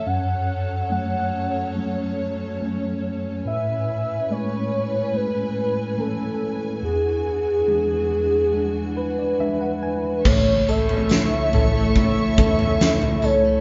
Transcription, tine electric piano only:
<<
  \new Staff \with { instrumentName = "Tine electric piano" } { \time 4/4 \key a \major \tempo 4 = 71 r1 | r1 | r2 r8 b'16 d''16 e''16 fis''16 gis''8 | r1 | }
  \new Staff \with { instrumentName = "Tine electric piano" } { \time 4/4 \key a \major fis,4 <fis a cis'>4 <fis a cis'>4 <fis a cis'>4 | a,4 <gis a cis'>4 <gis a cis'>4 <e a cis'>4 | e,4 <e gis d'>4 <e gis d'>4 <e gis d'>4 | a8 a'8 e'8 a'8 e'8 a'8 e'8 a'8 | }
>>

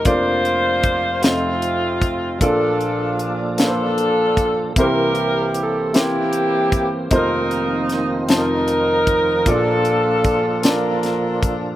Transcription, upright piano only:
<<
  \new Staff \with { instrumentName = "Upright piano" } { \time 6/8 \key bes \major \tempo 4. = 51 <bes d' f' bes' d''>4 r8 <c' ees' f' a' c''>4 r8 | <bes d' f' a' d''>4 r8 <bes d' f' a' ces'' c''>4 r8 | <c' e' g' bes' c''>4 r8 <c' e' g' bes' c''>4 r8 | <c' ees' f' bes' c''>4 r8 <c' ees' f' c'' a''>4 r8 |
<bes d' f' a' d''>4 r8 <bes d' f' d'' a''>4 r8 | }
  \new Staff \with { instrumentName = "Upright piano" } { \clef bass \time 6/8 \key bes \major <f,, f,>4. <f,, f,>4. | <bes,, bes,>2. | <c, c>2. | <f,, f,>4. <f,, f,>4. |
<bes,, bes,>2. | }
>>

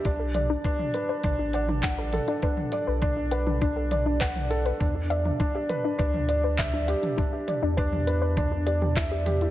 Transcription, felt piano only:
\new Staff \with { instrumentName = "Felt piano" } { \time 4/4 \key b \phrygian \tempo 4 = 101 d'8 d''8 d'8 b'8 d'8 d''8 fis''8 a'8 | d'8 d''8 d'8 b'8 d'8 d''8 fis''8 a'8 | d'8 d''8 d'8 b'8 d'8 d''8 e''8 g'8 | d'8 d''8 d'8 b'8 d'8 d''8 e''8 g'8 | }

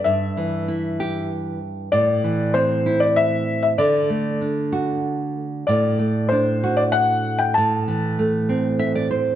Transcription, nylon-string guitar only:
\new Staff \with { instrumentName = "Nylon-string guitar" } { \time 3/4 \key d \mixolydian \tempo 4 = 96 << { r2. | r2. | r2. | r2. |
r2 e''16 d''16 c''8 | } \\ { g,8 e8 e'8 g'4. | a,8 e8 c'8 e'4. | d8 a8 d'8 fis'4. | a,8 a8 d'8 fis'4. |
a,8 e8 a8 c'4. | } >> }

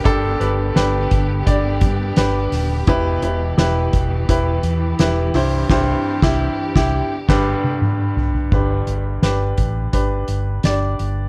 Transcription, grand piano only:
<<
  \new Staff \with { instrumentName = "Grand piano" } { \time 4/4 \key g \major \tempo 4 = 85 <d' g' a'>8 <d' g' b'>8 <d' g' b'>4 <d' g' d''>4 <d' g' b'>4 | <e' g' b'>8 <e' g' b'>8 <e' g' b'>4 <e' g' b'>4 <e' g' b'>8 <e' g' c''>8 | <g, e' g' c''>8 r16 <e' g'>8 r16 <e' g'>8 r16 <g, d d' g' b'>8 r4 r16 | <d' g' b'>4 <d' g' b'>4 <d' g' b'>4 <d' g' d''>4 | }
  \new Staff \with { instrumentName = "Grand piano" } { \clef bass \time 4/4 \key g \major <g, d>4. r2 r8 | b,4. r2 g,8 | r1 | <g, d>4. r2 r8 | }
>>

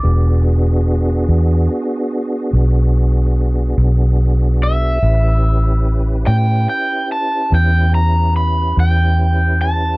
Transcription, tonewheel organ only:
\new Staff \with { instrumentName = "Tonewheel organ" } { \time 12/8 \key a \major \tempo 4. = 48 <b d' fis' gis'>1. | <cis' e' g' b'>1. | }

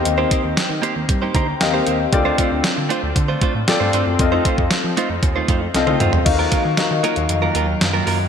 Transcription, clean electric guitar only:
\new Staff \with { instrumentName = "Clean electric guitar" } { \time 4/4 \key ees \lydian \tempo 4 = 116 r16 <bes ees' g' c''>16 <bes ees' g' c''>16 r8. <bes ees' g' c''>16 r8 <bes ees' g' c''>16 <bes ees' g' c''>16 r8 <bes ees' g' c''>16 <bes ees' g' c''>16 r16 | r16 <a d' f' c''>16 <a d' f' c''>16 r8. <a d' f' c''>16 r8 <a d' f' c''>16 <a d' f' c''>16 r8 <a d' f' c''>16 <a d' f' c''>16 r16 | r16 <a ees' f' c''>16 <a ees' f' c''>16 r8. <a ees' f' c''>16 r8 <a ees' f' c''>16 <a ees' f' c''>16 r8 <a ees' f' c''>16 <a ees' f' c''>16 r16 | r16 <ges bes f' bes'>16 <ges bes f' bes'>16 r8. <ges bes f' bes'>16 r8 <ges bes f' bes'>16 <ges bes f' bes'>16 r8 <ges bes f' bes'>16 <ges bes f' bes'>16 r16 | }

